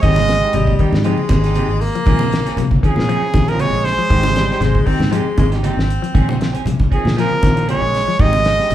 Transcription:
0.02 fingered electric bass G#1, clean electric guitar D#3 C4 D#4 G4, trombone G#3, trumpet D#5, kick, closed hi-hat, high conga, low conga
0.16 clean electric guitar C#3, muted clean electric guitar stroke, snare, high conga
0.28 snare, closed hi-hat
0.42 clean electric guitar D#4 G4
0.53 fingered electric bass G#1, clean electric guitar C3, baritone saxophone G3, muted clean electric guitar stroke, closed hi-hat, high conga, low conga
0.67 kick, high conga
0.79 clean electric guitar D#3 C4 D#4 G4, kick, closed hi-hat
0.92 fingered electric bass G#2, muted clean electric guitar stroke, snare, high conga, low conga
1.04 clean electric guitar F3 C4 D#4 G4, baritone saxophone G#3, closed hi-hat, high conga
1.18 muted clean electric guitar stroke, high conga
1.29 fingered electric bass G#1, clean electric guitar D#3, muted clean electric guitar stroke, kick, closed hi-hat, high conga
1.44 clean electric guitar D#4 G4, snare, closed hi-hat
1.55 clean electric guitar C4 D#4 G4, closed hi-hat, high conga
1.68 fingered electric bass G#1, muted clean electric guitar stroke
1.81 baritone saxophone A#3, muted clean electric guitar stroke, open hi-hat
1.95 clean electric guitar F3, closed hi-hat
2.06 fingered electric bass A#1, clean electric guitar D#3 F3 C4 G#4, muted clean electric guitar stroke, kick, closed hi-hat, high conga, low conga
2.19 clean electric guitar C#3, muted clean electric guitar stroke, high conga
2.32 muted clean electric guitar stroke, snare, closed hi-hat
2.46 clean electric guitar C4 C#4 G#4, snare, closed hi-hat
2.56 fingered electric bass A#1, clean electric guitar C3, muted clean electric guitar stroke, closed hi-hat, high conga, low conga
2.71 kick, high conga
2.83 clean electric guitar D#3 F3 C4 C#4 G#4, trumpet G#4, kick, closed hi-hat
2.87 trombone C#3
2.96 fingered electric bass A#2, muted clean electric guitar stroke, snare, low conga
3.08 clean electric guitar F3 C4 C#4 G#4, closed hi-hat, high conga
3.23 muted clean electric guitar stroke
3.34 fingered electric bass A#1, clean electric guitar D#3, muted clean electric guitar stroke, kick, closed hi-hat, high conga
3.48 trombone F3, clean electric guitar C4 C#4 G#4, trumpet A#4, closed hi-hat
3.59 clean electric guitar F3 C4 C#4 G#4, trombone G#3, trumpet C#5, closed hi-hat, high conga
3.72 fingered electric bass A#1, muted clean electric guitar stroke
3.85 trombone G#3, trumpet C5, muted clean electric guitar stroke, snare, open hi-hat
3.98 clean electric guitar F3
4.09 fingered electric bass G#1, clean electric guitar D#3 C4 D#4 G4, kick, closed hi-hat, high conga, low conga
4.23 clean electric guitar C#3, muted clean electric guitar stroke, high conga
4.35 baritone saxophone G3, muted clean electric guitar stroke, snare, closed hi-hat
4.49 clean electric guitar D#4 G4, snare
4.60 fingered electric bass G#1, clean electric guitar C3, baritone saxophone G#3, muted clean electric guitar stroke, snare, closed hi-hat, high conga, low conga
4.75 kick, high conga
4.86 clean electric guitar D#3 C4 D#4 G4, baritone saxophone C4, kick, open hi-hat
4.99 fingered electric bass G#2, muted clean electric guitar stroke, snare, high conga, low conga
5.12 clean electric guitar F3 C4 D#4 G4, baritone saxophone G#3, closed hi-hat, high conga
5.26 muted clean electric guitar stroke
5.38 fingered electric bass G#1, clean electric guitar D#3, baritone saxophone G#3, muted clean electric guitar stroke, kick, closed hi-hat, high conga
5.52 clean electric guitar D#4 G4, snare, closed hi-hat
5.63 clean electric guitar C4 D#4 G4, baritone saxophone C4, closed hi-hat, high conga
5.77 fingered electric bass G#1, muted clean electric guitar stroke, snare
5.88 muted clean electric guitar stroke, closed hi-hat
6.02 clean electric guitar F3, closed hi-hat
6.14 fingered electric bass A#1, clean electric guitar D#3 C4 C#4 G#4, muted clean electric guitar stroke, kick, closed hi-hat, high conga, low conga
6.29 clean electric guitar C#3, muted clean electric guitar stroke, high conga
6.39 muted clean electric guitar stroke, snare, closed hi-hat
6.53 clean electric guitar C4 C#4 G#4, closed hi-hat
6.65 fingered electric bass A#1, clean electric guitar C3, muted clean electric guitar stroke, closed hi-hat, high conga, low conga
6.80 kick, high conga
6.91 trombone D#3, clean electric guitar F3 C4 C#4 G#4, trumpet G#4, kick, closed hi-hat
7.05 fingered electric bass A#2, muted clean electric guitar stroke, snare, high conga
7.16 clean electric guitar F3 C4 C#4 G#4, trombone F3, trumpet A#4, snare, closed hi-hat, high conga
7.30 muted clean electric guitar stroke, high conga
7.42 fingered electric bass A#1, clean electric guitar D#3, muted clean electric guitar stroke, kick, snare, closed hi-hat, high conga
7.55 clean electric guitar C4 C#4, muted clean electric guitar stroke, closed hi-hat
7.67 clean electric guitar F3 C4 C#4 G#4, trombone G#3, trumpet C#5, closed hi-hat, high conga
7.82 fingered electric bass A#1, muted clean electric guitar stroke
7.93 muted clean electric guitar stroke, snare, open hi-hat
8.08 clean electric guitar F3
8.19 fingered electric bass G#1, clean electric guitar D#3 C4 D#4 G4, trombone G#3, trumpet D#5, kick, closed hi-hat, high conga, low conga
8.33 muted clean electric guitar stroke, high conga
8.45 snare, closed hi-hat
8.58 clean electric guitar D#4 G4, snare
8.70 fingered electric bass G#1, clean electric guitar C3, muted clean electric guitar stroke, closed hi-hat, high conga, low conga

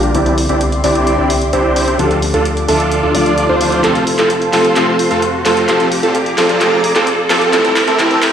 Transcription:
Already playing: sub bass A#1, grand piano D3 F3 A#3 D4 G4, supersaw synth D4 F4 G4, analog synth pad F4 A#4 D5 A#5, analog synth lead G4, riser
0.03 closed hi-hat
0.13 sub bass C2, grand piano D3 G3 C4 E4, supersaw synth C4 D4 E4 G4 D5, analog synth pad G4 E5 C6, analog synth lead D5, closed hi-hat
0.26 closed hi-hat
0.38 open hi-hat
0.49 sub bass C2, supersaw synth C4 D4 E4 G4 D5, analog synth lead D5, closed hi-hat
0.61 closed hi-hat
0.72 closed hi-hat
0.83 sub bass C2, grand piano D3 G3 C4 E4, supersaw synth C4 D4 E4 G4 D5, analog synth lead D5, open hi-hat
0.95 closed hi-hat
1.07 closed hi-hat
1.18 sub bass C2, supersaw synth C4 D4 E4 G4 D5, analog synth lead D5
1.30 open hi-hat
1.42 closed hi-hat
1.53 sub bass C2, supersaw synth C4 D4 E4 G4 C5, analog synth lead C5, closed hi-hat
1.76 open hi-hat
1.88 closed hi-hat
1.98 sub bass D2, grand piano D3 F3 A3 G4, supersaw synth D4 F4 A4, analog synth pad F4 A4 D6, analog synth lead A4, closed hi-hat
2.11 closed hi-hat
2.22 open hi-hat
2.34 sub bass D2, supersaw synth D4 F4 A4, analog synth lead A4, closed hi-hat
2.45 closed hi-hat
2.57 closed hi-hat
2.68 sub bass D2, grand piano D3 F3 A3 E5, supersaw synth D4 F4 A4, analog synth lead A4, open hi-hat
2.80 closed hi-hat
2.92 closed hi-hat
3.03 sub bass D2, supersaw synth D4 F4 A4, analog synth lead A4
3.14 sub bass D2, grand piano D3 F3 A3 F4, supersaw synth D4 F4 D5, analog synth lead D5, open hi-hat
3.26 closed hi-hat
3.38 closed hi-hat
3.49 sub bass D2, supersaw synth D4 F4 C5, analog synth lead C5
3.60 grand piano D3 F3 A3 F4, open hi-hat
3.72 closed hi-hat
3.83 sub bass F1, grand piano C3 F3 A3 F4, supersaw synth C4 F4 A4, analog synth lead A4, analog synth pad C5 C6, clap, closed hi-hat
3.95 closed hi-hat
4.07 open hi-hat
4.18 sub bass F1, supersaw synth C4 F4 A4, analog synth lead A4, clap, closed hi-hat
4.30 closed hi-hat
4.42 closed hi-hat
4.52 sub bass F1, grand piano C3 F3 A3 F4, supersaw synth C4 F4 A4, analog synth lead A4, clap, open hi-hat
4.65 closed hi-hat
4.75 sub bass F1, grand piano C3 F3 A3 F4, supersaw synth C4 F4 A4, analog synth lead A4, clap, closed hi-hat
4.99 open hi-hat
5.11 sub bass F2, supersaw synth C4 F4 A4, analog synth lead A4, closed hi-hat
5.22 closed hi-hat
5.44 sub bass F2, grand piano C3 F3 A3 F4, supersaw synth C4 F4 A4, analog synth lead A4, clap, open hi-hat
5.57 closed hi-hat
5.67 sub bass A#1, grand piano C3 F3 A3 F4, supersaw synth C4 F4 A4, analog synth lead A4, analog synth pad D5 A#5 D6, clap, closed hi-hat
5.80 closed hi-hat
5.92 open hi-hat
6.03 sub bass A#1, supersaw synth C4 F4 A4, analog synth lead A4, closed hi-hat
6.15 closed hi-hat
6.26 closed hi-hat
6.37 sub bass A#1, grand piano C3 F3 A3 F4, supersaw synth C4 F4 A4, analog synth lead A4, clap, open hi-hat
6.49 closed hi-hat
6.60 sub bass A#1, grand piano C3 F3 A3 F4, supersaw synth C4 F4 A4, analog synth lead A4, clap, closed hi-hat
6.84 open hi-hat
6.95 sub bass A#1, supersaw synth C4 F4 A4, analog synth lead A4, clap, closed hi-hat
7.07 closed hi-hat
7.29 sub bass A#1, grand piano C3 F3 A3 F4, supersaw synth C4 F4 A4, analog synth lead A4, clap, open hi-hat
7.42 closed hi-hat
7.52 sub bass C2, grand piano C3 E3 A3 E4, supersaw synth C4 E4 A4, analog synth lead A4, analog synth pad C5 E5 G5, clap, closed hi-hat
7.65 closed hi-hat
7.76 clap, open hi-hat
7.88 sub bass C2, supersaw synth C4 E4 A4, analog synth lead A4, closed hi-hat
7.98 sub bass C2, grand piano C3 E3 A3 E4, supersaw synth C4 E4 A4, analog synth lead A4, clap, closed hi-hat
8.11 closed hi-hat
8.22 clap, open hi-hat

